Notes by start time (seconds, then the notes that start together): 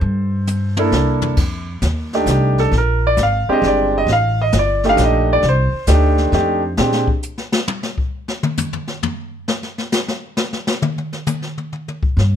Already playing: A4 C5
0.01 G2, brush sweep
0.47 hi-hat pedal, high tom
0.77 A#3 D4 E4 A4, high tom
0.92 C2, snare
1.22 floor tom
1.37 F2, brush sweep, kick, snare, crash
1.82 D#2, snare, hi-hat pedal
2.13 A3 D4 D#4 G4, snare
2.26 C2, snare, hi-hat pedal
2.31 G4
2.58 A4, snare
2.71 A#1, brush sweep, snare
2.77 A#4
3.07 D5
3.17 G#1, snare, hi-hat pedal
3.23 F5
3.49 G#3 C4 D4 G4 D#5, muted upright bass stroke
3.62 G1, snare
3.68 D5
3.98 D#5
4.07 A1, brush sweep, snare
4.13 F5
4.42 D#5
4.52 G1, snare, hi-hat pedal
4.59 D5
4.84 A3 D4 D#4 G4, snare
4.89 F5
4.97 A#1, snare, hi-hat pedal
5.04 D#5
5.33 D5
5.42 C2, brush sweep, snare
5.49 C5
5.73 muted upright bass stroke
5.87 D2 A3 D4 D#4 G4, snare, hi-hat pedal
6.18 snare
6.32 F2 A3 D4 D#4 G4, snare
6.77 A#2 G#3 C4 D4 G4, snare
6.92 snare
7.08 kick
7.23 hi-hat pedal
7.38 snare
7.52 snare
7.68 high tom
7.83 snare
7.98 kick
8.28 snare
8.43 mid tom
8.57 floor tom, hi-hat pedal
8.73 floor tom
8.87 snare
9.03 floor tom
9.48 snare
9.63 snare
9.78 snare
9.92 snare, hi-hat pedal
10.08 snare
10.37 snare
10.53 snare
10.67 snare
10.82 mid tom
10.98 mid tom
11.13 snare
11.26 hi-hat pedal, mid tom
11.42 snare
11.58 mid tom
11.73 mid tom
11.88 mid tom
12.03 kick
12.17 G2, brush sweep, snare